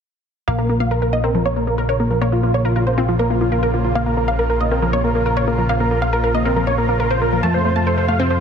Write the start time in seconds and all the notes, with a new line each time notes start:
0.48 A#1 C#3 F3 A#3 F4 F5
0.58 A#3 A#4
0.69 A#3 A#4
0.80 A#3 F5
0.91 A#4
1.02 A#4
1.13 A#3 D#5
1.24 C4 A#4
1.35 F3 A#4
1.45 A#3 C#5
1.56 A#3 A#4
1.67 A#3 A#4
1.78 A#4
1.89 A#4 C#5
2.00 A#3 A#4
2.11 F3 A#4
2.21 A#3 C#5
2.32 A#3 F4
2.43 A#3 F4
2.54 A#3 C#5
2.65 F4 A#4
2.76 F4 A#4
2.87 A#3 C5
2.98 C4 F4
3.08 F3 F4
3.19 A#3 A#4
3.30 A#3 F4
3.41 A#3 F4
3.52 F4 A#4
3.63 A#4
3.74 A#3 F4
3.84 F3 F4
3.95 A#3 F5
4.06 A#3 A#4
4.17 A#3 A#4
4.28 A#3 F5
4.39 A#4
4.50 A#4
4.61 A#3 D#5
4.71 C4 A#4
4.82 F3 A#4
4.93 A#3 C#5
5.04 A#3 A#4
5.15 A#3 A#4
5.26 A#4
5.37 A#4 C#5
5.48 A#3 A#4
5.58 F3 A#4
5.69 A#3 F5
5.80 A#3 A#4
5.91 A#3 A#4
6.02 A#3 F5
6.13 A#4
6.24 A#4
6.34 A#3 D#5
6.45 C4 A#4
6.56 F3 A#4
6.67 A#3 C#5
6.78 A#3 A#4
6.89 A#3 A#4
7.00 A#4
7.10 A#4 C5
7.21 A#3 A#4
7.32 F3 A#4
7.43 F2 C3 A3 A5
7.54 A3 C5
7.65 A3 C5
7.76 A3 A5
7.87 A4 C5
7.98 A4 C5
8.08 A3 F5
8.19 C4 C5
8.30 F3 C5